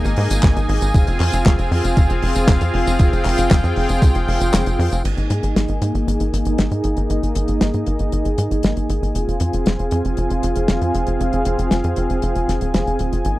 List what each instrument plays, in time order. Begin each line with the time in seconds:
Already playing: analog synth pad A#3 D#4 G#4 D#5 G#5
0.05 analog synth bass G#1, closed hi-hat, tambourine
0.16 analog synth bass G#2, open hi-hat
0.30 analog synth bass G#1, closed hi-hat, tambourine
0.43 analog synth bass G#1, kick, snare, clap, closed hi-hat, tambourine
0.56 analog synth bass G#1, closed hi-hat, tambourine
0.69 analog synth bass G#1, open hi-hat
0.81 analog synth bass G#1, closed hi-hat, tambourine
0.94 analog synth bass F1, analog synth pad C4 F4 G#4 F5, kick, closed hi-hat, tambourine
1.07 analog synth bass F1, closed hi-hat, tambourine
1.20 analog synth bass F2, clap, open hi-hat
1.32 analog synth bass F1, closed hi-hat, tambourine
1.46 analog synth bass F1, kick, snare, clap, closed hi-hat, tambourine
1.59 analog synth bass F1, closed hi-hat, tambourine
1.71 analog synth bass F2, open hi-hat
1.84 analog synth bass F1, closed hi-hat, tambourine
1.97 analog synth bass F1, kick, closed hi-hat, tambourine
2.10 analog synth bass F1, closed hi-hat, tambourine
2.22 analog synth bass F1, open hi-hat
2.35 analog synth bass F1, closed hi-hat, tambourine
2.47 analog synth bass F1, kick, snare, clap, closed hi-hat, tambourine
2.61 analog synth bass F2, closed hi-hat, tambourine
2.74 analog synth bass F1, open hi-hat
2.87 analog synth bass F1, closed hi-hat, tambourine
2.99 analog synth bass F1, analog synth pad G5, kick, closed hi-hat, tambourine
3.12 analog synth bass F1, closed hi-hat, tambourine
3.25 analog synth bass F1, clap, open hi-hat
3.38 analog synth bass F1, closed hi-hat, tambourine
3.51 analog synth bass F1, kick, snare, clap, closed hi-hat, tambourine
3.64 analog synth bass F2, closed hi-hat, tambourine
3.76 analog synth bass F1, open hi-hat
3.89 analog synth bass F1, closed hi-hat, tambourine
4.02 analog synth bass C2, kick, closed hi-hat, tambourine
4.15 analog synth bass F1, closed hi-hat, tambourine
4.28 analog synth bass F1, open hi-hat
4.40 analog synth bass F1, closed hi-hat, tambourine
4.53 analog synth bass F1, snare, clap, closed hi-hat, tambourine
4.66 analog synth bass F1, closed hi-hat, tambourine
4.79 analog synth bass F2, open hi-hat
4.92 analog synth bass F1, closed hi-hat, tambourine
5.05 analog synth bass G#1, analog synth pad A#3 D#4 G#4 D#5 G#5, closed hi-hat, crash
5.17 analog synth bass G#1, closed hi-hat
5.30 analog synth bass G#2, closed hi-hat
5.43 analog synth bass G#1, closed hi-hat
5.56 analog synth bass G#1, snare, closed hi-hat
5.68 analog synth bass G#1, closed hi-hat
5.82 analog synth bass G#2, closed hi-hat
5.94 analog synth bass G#1, closed hi-hat
6.07 analog synth bass G#1, closed hi-hat
6.20 analog synth bass G#1, closed hi-hat
6.33 analog synth bass G#1, closed hi-hat
6.45 analog synth bass G#1, closed hi-hat
6.58 analog synth bass G#1, snare, closed hi-hat
6.71 analog synth bass G#2, closed hi-hat
6.84 analog synth bass G#1, closed hi-hat
6.97 analog synth bass G#1, closed hi-hat
7.10 analog synth bass G#1, closed hi-hat
7.23 analog synth bass G#1, closed hi-hat
7.35 analog synth bass G#1, closed hi-hat
7.48 analog synth bass G#1, closed hi-hat
7.61 analog synth bass G#1, snare, closed hi-hat
7.74 analog synth bass G#2, closed hi-hat
7.86 analog synth bass G#1, closed hi-hat
7.99 analog synth bass G#1, closed hi-hat
8.12 analog synth bass G#1, closed hi-hat
8.25 analog synth bass G#1, closed hi-hat
8.38 analog synth bass G#2, closed hi-hat
8.51 analog synth bass G#1, closed hi-hat
8.63 analog synth bass G#1, snare, closed hi-hat
8.77 analog synth bass G#1, closed hi-hat
8.89 analog synth bass G#1, closed hi-hat
9.02 analog synth bass G#1, closed hi-hat
9.15 analog synth bass F1, analog synth pad C4 F4 F5, closed hi-hat
9.28 analog synth bass F1, closed hi-hat
9.40 analog synth bass F2, closed hi-hat
9.53 analog synth bass F1, closed hi-hat
9.66 analog synth bass F1, snare, closed hi-hat
9.79 analog synth bass F1, closed hi-hat
9.91 analog synth bass F2, closed hi-hat
10.05 analog synth bass F1, closed hi-hat
10.17 analog synth bass F1, closed hi-hat
10.30 analog synth bass F1, closed hi-hat
10.43 analog synth bass F1, closed hi-hat
10.55 analog synth bass F1, closed hi-hat
10.68 analog synth bass F1, snare, closed hi-hat
10.82 analog synth bass F2, closed hi-hat
10.94 analog synth bass F1, closed hi-hat
11.07 analog synth bass F1, closed hi-hat
11.20 analog synth bass F1, closed hi-hat
11.33 analog synth bass F1, closed hi-hat
11.45 analog synth bass F1, closed hi-hat
11.58 analog synth bass F1, closed hi-hat
11.71 analog synth bass F1, snare, closed hi-hat
11.84 analog synth bass F2, closed hi-hat
11.96 analog synth bass F1, closed hi-hat
12.10 analog synth bass F1, closed hi-hat
12.22 analog synth bass F1, closed hi-hat
12.35 analog synth bass F1, closed hi-hat
12.48 analog synth bass F1, snare, closed hi-hat
12.61 analog synth bass D#1, closed hi-hat
12.74 analog synth bass F1, snare, closed hi-hat
12.87 analog synth bass F1, closed hi-hat
12.99 analog synth bass D#1, closed hi-hat
13.12 analog synth bass F1, closed hi-hat
13.25 analog synth bass G#1, analog synth pad A#3 D#4 D#5, closed hi-hat